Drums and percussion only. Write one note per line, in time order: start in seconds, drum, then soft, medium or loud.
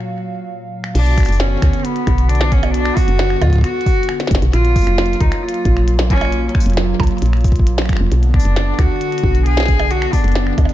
0.84 finger snap medium
0.95 closed hi-hat medium
0.95 crash loud
1.06 closed hi-hat soft
1.18 finger snap soft
1.18 kick loud
1.18 open hi-hat medium
1.20 finger snap soft
1.23 finger snap soft
1.23 open hi-hat medium
1.26 finger snap soft
1.26 closed hi-hat medium
1.32 open hi-hat soft
1.40 snare loud
1.40 closed hi-hat medium
1.62 finger snap medium
1.62 kick loud
1.62 closed hi-hat medium
1.73 closed hi-hat medium
1.85 closed hi-hat medium
1.96 closed hi-hat soft
2.07 finger snap medium
2.07 kick loud
2.07 closed hi-hat medium
2.18 closed hi-hat medium
2.29 closed hi-hat medium
2.35 closed hi-hat soft
2.41 finger snap medium
2.41 snare loud
2.52 kick loud
2.52 closed hi-hat medium
2.63 closed hi-hat medium
2.63 percussion blips medium
2.74 closed hi-hat medium
2.85 finger snap medium
2.85 closed hi-hat soft
2.97 kick loud
2.97 open hi-hat medium
3.08 closed hi-hat medium
3.19 snare loud
3.19 closed hi-hat medium
3.30 finger snap medium
3.42 kick medium
3.42 closed hi-hat medium
3.42 percussion blips medium
3.44 kick medium
3.47 kick medium
3.50 kick medium
3.53 kick medium
3.53 closed hi-hat medium
3.56 kick loud
3.58 kick loud
3.61 finger snap medium
3.61 kick loud
3.61 closed hi-hat medium
3.81 closed hi-hat soft
3.86 kick loud
3.86 open hi-hat medium
4.03 closed hi-hat medium
4.09 finger snap medium
4.20 snare medium
4.20 closed hi-hat soft
4.27 kick loud
4.27 snare medium
4.27 closed hi-hat medium
4.35 snare loud
4.42 closed hi-hat medium
4.53 finger snap medium
4.53 closed hi-hat medium
4.65 closed hi-hat soft
4.76 kick loud
4.76 open hi-hat medium
4.79 open hi-hat medium
4.81 open hi-hat medium
4.84 finger snap medium
4.84 closed hi-hat medium
4.84 open hi-hat soft
4.98 snare loud
4.98 closed hi-hat medium
5.06 closed hi-hat medium
5.13 closed hi-hat medium
5.21 kick loud
5.21 closed hi-hat medium
5.32 finger snap medium
5.32 closed hi-hat medium
5.49 closed hi-hat medium
5.54 closed hi-hat soft
5.65 kick loud
5.65 closed hi-hat medium
5.77 finger snap medium
5.77 closed hi-hat medium
5.88 closed hi-hat medium
5.99 snare loud
5.99 closed hi-hat soft
6.10 finger snap soft
6.10 kick loud
6.10 closed hi-hat medium
6.18 finger snap soft
6.18 closed hi-hat medium
6.18 percussion blips medium
6.25 finger snap soft
6.32 closed hi-hat medium
6.49 closed hi-hat soft
6.55 finger snap medium
6.55 kick loud
6.60 open hi-hat medium
6.66 closed hi-hat soft
6.70 closed hi-hat soft
6.74 snare loud
6.74 closed hi-hat soft
6.77 closed hi-hat medium
7.00 finger snap medium
7.00 kick loud
7.00 closed hi-hat soft
7.00 percussion blips medium
7.03 closed hi-hat soft
7.07 closed hi-hat medium
7.11 closed hi-hat soft
7.18 closed hi-hat soft
7.22 closed hi-hat medium
7.26 closed hi-hat soft
7.33 finger snap medium
7.33 closed hi-hat soft
7.37 closed hi-hat soft
7.41 closed hi-hat soft
7.44 kick loud
7.44 closed hi-hat soft
7.44 open hi-hat medium
7.48 closed hi-hat soft
7.52 kick loud
7.52 closed hi-hat soft
7.56 kick medium
7.56 closed hi-hat medium
7.67 closed hi-hat medium
7.78 finger snap soft
7.78 snare loud
7.82 finger snap soft
7.86 finger snap soft
7.89 finger snap medium
7.89 kick loud
7.89 closed hi-hat medium
7.93 finger snap medium
7.97 finger snap medium
8.12 closed hi-hat medium
8.23 closed hi-hat soft
8.34 finger snap medium
8.34 kick loud
8.40 open hi-hat medium
8.45 closed hi-hat medium
8.56 snare loud
8.56 closed hi-hat medium
8.79 finger snap medium
8.79 kick loud
8.79 closed hi-hat medium
9.01 closed hi-hat medium
9.12 closed hi-hat soft
9.18 closed hi-hat medium
9.24 kick loud
9.35 closed hi-hat medium
9.46 closed hi-hat medium
9.57 finger snap medium
9.57 snare loud
9.57 closed hi-hat soft
9.60 snare medium
9.63 snare medium
9.66 kick loud
9.66 snare medium
9.66 closed hi-hat medium
9.80 closed hi-hat medium
9.80 percussion blips medium
9.91 closed hi-hat medium
10.02 finger snap medium
10.02 closed hi-hat soft
10.13 kick loud
10.13 open hi-hat medium
10.24 closed hi-hat soft
10.28 closed hi-hat soft
10.32 snare loud
10.32 closed hi-hat soft
10.36 closed hi-hat medium
10.47 finger snap medium
10.58 kick loud
10.58 closed hi-hat medium
10.58 percussion blips soft
10.65 closed hi-hat soft
10.65 percussion blips medium